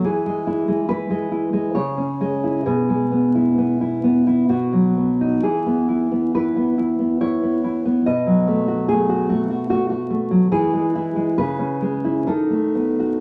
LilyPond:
\new Staff \with { instrumentName = "Nylon-string guitar" } { \time 3/4 \key e \major \tempo 4 = 69 << { gis'4 b'4 cis''4 | gis'2 fis'4 | gis'4 b'4 cis''4 | dis''4 gis'8 fis'8 fis'4 |
gis'4 b'4 a'4 | } \\ { e16 gis16 e'16 gis16 e'16 gis16 e'16 gis16 cis16 cis'16 gis16 e'16 | b,16 gis16 b16 e'16 b16 e'16 b16 e'16 b,16 fis16 b16 dis'16 | e16 b16 e'16 b16 e'16 b16 e'16 b16 e'16 b16 e'16 b16 | b,16 fis16 a16 fis'16 a16 fis'16 a16 fis'16 a16 fis'16 a16 fis16 |
e16 gis16 e'16 gis16 cis16 cis'16 gis16 e'16 dis16 a16 b16 fis'16 | } >> }